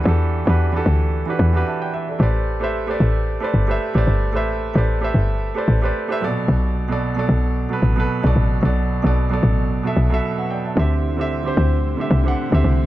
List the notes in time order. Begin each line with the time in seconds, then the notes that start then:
Already playing: E3 D4 F#4 G4 A4 B4
0.04 E2 E3 D4 F#4 G4
0.08 A4
0.45 E2 E3 D4 F#4 G4 B4
0.72 E3 D4 F#4 G4
0.76 A4
0.86 D2
1.26 E3 D4 F#4 G4
1.30 B4
1.39 E2
1.53 E3 D4 F#4 G4 B4
1.67 E5 A5
1.82 D5 G5
1.94 B4 E5
2.09 A4 D5
2.19 A1 A3 G4 B4 C5 D5
2.60 A3 G4 B4 C5 E5
2.87 A3 G4 B4 C5 D5
3.00 A1
3.40 A3 G4 B4 C5 D5
3.54 G1
3.67 A3 G4 B4 C5
3.71 E5
3.94 A1 A3 G4 B4 C5 D5
4.07 G1
4.32 A1 A3 G4 B4 C5 E5
4.74 A1 A3 G4 B4 C5
4.78 D5
5.01 A3 G4 B4 C5 E5
5.14 G1
5.54 A3 G4 B4 C5 D5
5.68 A1
5.81 A3 G4 B4 C5 D5
6.08 A3 G4 B4 C5
6.12 E5
6.20 A#2 F#3 A4
6.24 B2 D5
6.48 B1
6.88 B2 F#3 A4 D5
7.15 B2 F#3 A4
7.19 D5
7.29 B1
7.69 B2 F#3 A4 B4
7.82 A1
7.96 B2 F#3 A4 B4
8.22 B1 B2 F#3 A4
8.26 D5
8.36 A1
8.61 B1 B2 F#3 A4 D5
9.03 B1 B2 F#3 A4 D5
9.29 B2 F#3 A4 D5
9.43 A1
9.83 B2 F#3 A4 E5
9.97 B1
10.10 B2 F#3 A4
10.14 E5
10.38 B4 F#5
10.50 D5 G5
10.65 E5 A5
10.75 D2 D3 A3 C4 E4 G4 E5
11.17 D3 C4 G4
11.21 E5
11.43 D3 C4 G4
11.47 C5
11.57 D2
11.97 D3 C4 G4 E5
12.11 C2
12.24 D3 C4 G4
12.28 F#5
12.51 D2 D3 C4 G4 E5
12.64 C2